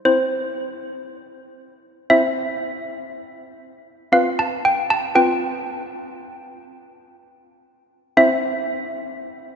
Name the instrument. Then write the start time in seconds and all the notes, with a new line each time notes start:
handbells
0.05 C4 E4 C5
2.10 C4 E4 C5 E5
4.12 C4 F4 B4 F5
4.39 A5
4.65 G5
4.90 A5
5.15 C4 F4 B4 G5
8.17 C4 E4 C5 E5